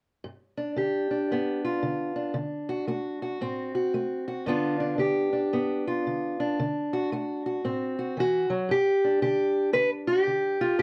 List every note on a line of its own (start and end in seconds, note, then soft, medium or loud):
0.24 0.73 G2 medium
0.57 1.10 D4 medium
0.76 1.26 D3 medium
0.76 1.63 G4 medium
1.11 2.15 D4 medium
1.31 1.79 G2 medium
1.31 2.34 B3 medium
1.65 2.34 F4 medium
1.83 2.32 D3 medium
2.16 3.41 D4 medium
2.34 2.84 D3 medium
2.69 2.87 F#4 medium
2.87 3.37 A3 medium
2.87 3.21 F#4 medium
3.22 3.74 F#4 medium
3.41 3.90 A2 medium
3.41 4.45 C4 medium
3.75 4.27 F#4 medium
3.94 4.43 A3 medium
4.28 4.45 F#4 medium
4.46 4.96 G2 medium
4.46 4.97 D3 medium
4.46 5.52 B3 medium
4.46 4.80 D4 medium
4.46 4.99 F4 medium
4.80 5.32 D4 medium
4.98 5.48 D3 medium
4.98 5.86 G4 medium
5.33 6.39 D4 medium
5.53 6.02 G2 medium
5.53 6.57 B3 medium
5.87 6.57 F4 medium
6.07 6.56 D3 medium
6.40 7.64 D4 medium
6.59 7.08 D3 medium
6.93 7.12 F#4 medium
7.12 7.61 A3 medium
7.12 7.45 F#4 medium
7.46 7.98 F#4 medium
7.64 8.14 A2 medium
7.64 8.20 C4 medium
7.99 8.19 F#4 medium
8.17 8.49 E3 medium
8.17 8.72 F#4 medium
8.50 8.70 F#3 medium
8.69 9.18 G2 medium
8.69 9.21 G4 loud
9.04 10.61 D4 soft
9.22 9.71 D3 medium
9.22 9.73 G4 medium
9.73 10.23 D3 medium
9.73 9.89 B4 loud
10.07 10.78 G4 medium
10.27 10.76 D3 medium
10.61 10.82 F4 medium
10.79 10.82 G2 medium
10.79 10.82 G4 medium